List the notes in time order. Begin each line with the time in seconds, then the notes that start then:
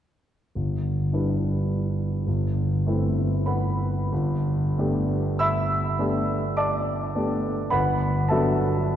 0.55 G1
1.13 G3 D4 E4 B4
2.27 G1
2.87 A3 C4 E4 B4
3.46 B4 F#5 B5
4.12 G1
4.78 A3 B3 D4 G4
5.39 E5 B5 E6
5.99 A3 B3 D4 G4
6.57 D5 A5 D6
7.15 A3 B3 D4 G4
7.70 G1 B4 F#5 B5
8.28 F#3 B3 D4 F#4 A4 E5 A5